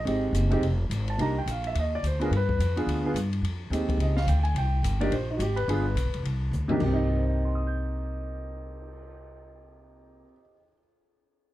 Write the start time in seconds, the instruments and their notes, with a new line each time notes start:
Already playing: grand piano D#5
0.05 upright bass G#1, grand piano G#3 C4 D#4 G4, ride
0.33 upright bass F#1, hi-hat pedal, ride
0.50 grand piano G#3 C4 D#4 G4, ride
0.61 upright bass F1, ride
0.90 upright bass G#1, hi-hat pedal, ride
1.08 grand piano A5, ride
1.18 upright bass C2, grand piano A#3 D4 D#4 G4 A#5, ride
1.38 grand piano G5
1.46 upright bass A#1, hi-hat pedal, ride
1.51 grand piano F5
1.64 grand piano E5, ride
1.75 upright bass D#2, ride
1.80 grand piano D#5
1.95 grand piano D5
2.03 upright bass D2, hi-hat pedal, ride
2.07 grand piano C5
2.20 grand piano B3 D4 F4 G#4, ride
2.24 grand piano A#4
2.31 upright bass G2, ride
2.37 grand piano B4
2.49 kick
2.58 upright bass F2, hi-hat pedal, ride
2.76 grand piano B3 D4 F4 G#4, ride
2.86 upright bass D2, ride
3.04 grand piano B3 D4 F4 G#4
3.14 upright bass G2, hi-hat pedal, ride
3.33 ride
3.42 upright bass F2, ride
3.70 upright bass D#2, grand piano G#3 C4 D#4 G4, hi-hat pedal, ride
3.89 kick, ride
3.97 upright bass C#2, ride
4.02 grand piano D#5
4.17 grand piano F5, snare
4.26 upright bass D2, grand piano G5, hi-hat pedal, ride
4.39 grand piano G5
4.43 grand piano G#5, ride
4.55 upright bass C2, grand piano G5, ride
4.83 upright bass G1, hi-hat pedal, ride
5.00 grand piano A#3 D4 D#4 G4 D5, ride
5.11 upright bass A#1, grand piano C5, ride
5.31 grand piano D#4
5.37 upright bass G#1, grand piano F#4, hi-hat pedal, ride
5.42 grand piano G4
5.56 grand piano B4, ride
5.68 upright bass G1, grand piano B3 D4 F4 G#4, ride
5.95 upright bass B1, hi-hat pedal, ride
6.05 upright bass G1
6.14 upright bass F1, ride
6.24 upright bass C2, ride
6.51 upright bass D2, hi-hat pedal
6.68 grand piano C3 A#3 D4 D#4 G4, floor tom
6.77 upright bass C2, grand piano A#3, kick, crash
6.81 grand piano G4
6.86 grand piano C4
6.93 grand piano D#4
6.97 cymbal swell
7.09 grand piano G4
7.17 grand piano C5
7.35 grand piano G5
7.45 grand piano C6
7.55 grand piano D#6
7.67 grand piano G6